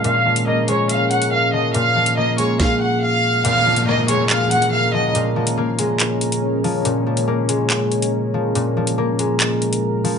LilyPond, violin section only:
\new Staff \with { instrumentName = "Violin section" } { \time 4/4 \key bes \minor \tempo 4 = 141 f''4 ees''8 des''8 f''8 ges''8 f''8 ees''8 | f''4 ees''8 des''8 f''8 ges''8 f''4 | f''4 ees''8 des''8 f''8 ges''8 f''8 ees''8 | r1 |
r1 | r1 | }